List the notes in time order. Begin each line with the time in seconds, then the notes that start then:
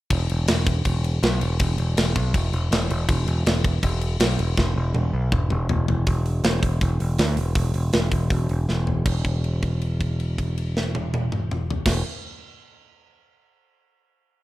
0.10 E1, kick, crash
0.29 E1, crash
0.48 E1, snare, crash
0.67 kick, crash
0.85 E1, kick, crash
1.04 crash
1.23 B1, snare, crash
1.41 E1, crash
1.59 E1, kick, crash
1.78 E1, crash
1.97 E1, snare, crash
2.16 B1, kick, crash
2.34 E1, kick, crash
2.52 E1, crash
2.71 E1, snare, crash
2.90 E1, crash
3.09 E1, kick, crash
3.27 E1, crash
3.45 E1, snare, crash
3.64 kick, crash
3.83 E1, kick, crash
4.01 crash
4.20 B1, snare, crash
4.38 E1, crash
4.57 E1, kick, snare
4.76 E1
4.94 E1, high tom
5.13 B1
5.32 E1, kick, mid tom
5.50 E1, mid tom
5.69 E1, floor tom
5.88 E1, floor tom
6.07 E1, kick, open hi-hat
6.26 open hi-hat
6.44 E1, snare, open hi-hat
6.62 E1, kick, open hi-hat
6.81 E1, kick, open hi-hat
7.00 E1, open hi-hat
7.19 D2, snare, open hi-hat
7.37 E1, open hi-hat
7.55 E1, kick, open hi-hat
7.74 E1, open hi-hat
7.93 E1, snare, open hi-hat
8.12 E1, kick, open hi-hat
8.30 E1, kick, open hi-hat
8.49 E1, open hi-hat
8.68 E1, snare
8.87 floor tom
9.05 E1, kick, crash
9.25 kick, crash
9.44 crash
9.63 kick, crash
9.82 crash
10.01 kick, crash
10.20 crash
10.38 kick, crash
10.58 crash
10.77 snare
10.95 high tom
11.14 high tom
11.32 mid tom
11.51 mid tom
11.70 floor tom
11.85 E1, kick, snare, crash